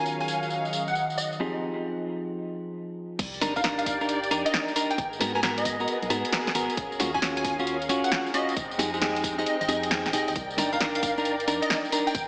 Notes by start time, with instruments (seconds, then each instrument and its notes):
Already playing: clean electric guitar D#3 C#4 F4 F#4 A#4, analog synth pad F#3 C#4 G#4 F5 A#5, violin section A#4 C#5 F5, digital synth lead G#5
0.06 tambourine
0.20 digital synth lead G#5, tambourine
0.28 digital synth lead G#5, tambourine
0.34 analog synth pad D#5
0.43 tambourine
0.50 tambourine
0.65 tambourine
0.73 tambourine
0.88 digital synth lead F#5, tambourine
0.95 tambourine
1.10 tambourine
1.18 digital synth lead D#5, tambourine
1.33 tambourine
1.40 clean electric guitar F3 C4 D#4 G4 G#4
3.19 fm bass C2, violin section G4 A#4 D5, kick, closed hi-hat, crash, tambourine
3.34 tambourine
3.41 fm bass G1, clean electric guitar D4 D#4 A#4, snare, open hi-hat, tambourine
3.56 clean electric guitar D4 D#4 A#4, digital synth lead F5, kick, tambourine
3.64 clean electric guitar D4 D#4 A#4, snare, closed hi-hat, tambourine
3.78 digital synth lead F5, closed hi-hat, tambourine
3.86 digital synth lead F5, kick, open hi-hat, tambourine
4.01 clean electric guitar D4 D#4 A#4, tambourine
4.09 closed hi-hat, tambourine
4.24 closed hi-hat, tambourine
4.31 fm bass F2, clean electric guitar D4 D#4 A#4, open hi-hat, tambourine
4.45 digital synth lead D#5, closed hi-hat, tambourine
4.54 snare, closed hi-hat, tambourine
4.68 tambourine
4.76 clean electric guitar D4 D#4 A#4, open hi-hat, tambourine
4.90 digital synth lead G5, closed hi-hat, tambourine
4.98 fm bass G#1, violin section B3 G#4, kick, closed hi-hat, tambourine
5.13 tambourine
5.20 fm bass G#2, clean electric guitar B3 F#4 A#4, snare, open hi-hat, tambourine
5.35 clean electric guitar B3 F#4 A#4, digital synth lead G#5, tambourine
5.43 clean electric guitar B3 F#4 A#4, snare, closed hi-hat, tambourine
5.58 digital synth lead D#5, closed hi-hat, tambourine
5.65 kick, open hi-hat, tambourine
5.80 clean electric guitar B3 F#4 A#4, tambourine
5.88 closed hi-hat, tambourine
6.02 fm bass B1, closed hi-hat, tambourine
6.10 fm bass G#2, clean electric guitar B3 F#4 A#4, snare, open hi-hat, tambourine
6.25 closed hi-hat, tambourine
6.32 snare, closed hi-hat, tambourine
6.47 snare, tambourine
6.55 fm bass G#1, clean electric guitar B3 F#4 A#4, open hi-hat, tambourine
6.70 closed hi-hat, tambourine
6.77 fm bass D#1, violin section C#4 F5, kick, closed hi-hat, tambourine
6.92 tambourine
7.00 fm bass D#2, clean electric guitar C#4 F4 F#4, snare, open hi-hat, tambourine
7.14 clean electric guitar C#4 F4 F#4, digital synth lead G#5, kick, tambourine
7.22 clean electric guitar C#4 F4 F#4, snare, closed hi-hat, tambourine
7.37 digital synth lead G#5, closed hi-hat, tambourine
7.44 digital synth lead G#5, kick, open hi-hat, tambourine
7.59 clean electric guitar C#4 F4 F#4, tambourine
7.67 closed hi-hat, tambourine
7.82 closed hi-hat, tambourine
7.89 fm bass G#1, clean electric guitar C#4 F4 F#4, open hi-hat, tambourine
8.04 digital synth lead F#5, closed hi-hat, tambourine
8.12 snare, closed hi-hat, tambourine
8.27 tambourine
8.34 clean electric guitar C#4 F4 F#4, digital synth lead D#5, open hi-hat, tambourine
8.49 closed hi-hat, tambourine
8.57 fm bass F1, violin section G#3 C4 D#4 G5, kick, closed hi-hat, tambourine
8.71 tambourine
8.79 fm bass F2, clean electric guitar D#4 G4 G#4, snare, open hi-hat, tambourine
8.94 clean electric guitar D#4 G4 G#4, tambourine
9.01 clean electric guitar D#4 G4 G#4, snare, closed hi-hat, tambourine
9.16 closed hi-hat, tambourine
9.24 kick, open hi-hat, tambourine
9.38 clean electric guitar D#4 G4 G#4, digital synth lead D#5, tambourine
9.46 digital synth lead D#5, closed hi-hat, tambourine
9.61 fm bass G#1, digital synth lead D#5, closed hi-hat, tambourine
9.68 fm bass F2, clean electric guitar D#4 G4 G#4, digital synth lead D#5, snare, open hi-hat, tambourine
9.83 digital synth lead D#5, closed hi-hat, tambourine
9.91 snare, closed hi-hat, tambourine
10.06 fm bass G#1, snare, tambourine
10.13 fm bass D#1, clean electric guitar D#4 G4 G#4, digital synth lead D#5, open hi-hat, tambourine
10.28 fm bass F2, digital synth lead D#5, closed hi-hat, tambourine
10.35 fm bass C2, violin section A#4 D5, kick, closed hi-hat, tambourine
10.50 tambourine
10.58 fm bass G1, clean electric guitar D4 D#4 A#4, snare, open hi-hat, tambourine
10.72 clean electric guitar D4 D#4 A#4, digital synth lead F5, kick, tambourine
10.80 clean electric guitar D4 D#4 A#4, snare, closed hi-hat, tambourine
10.95 digital synth lead F5, closed hi-hat, tambourine
11.02 digital synth lead F5, kick, open hi-hat, tambourine
11.17 clean electric guitar D4 D#4 A#4, tambourine
11.25 closed hi-hat, tambourine
11.40 closed hi-hat, tambourine
11.47 fm bass F2, clean electric guitar D4 D#4 A#4, open hi-hat, tambourine
11.62 digital synth lead D#5, closed hi-hat, tambourine
11.70 snare, closed hi-hat, tambourine
11.85 tambourine
11.92 clean electric guitar D4 D#4 A#4, open hi-hat, tambourine
12.07 digital synth lead G5, closed hi-hat, tambourine
12.15 fm bass G#1, violin section B3 G#4 A#4, kick, closed hi-hat, tambourine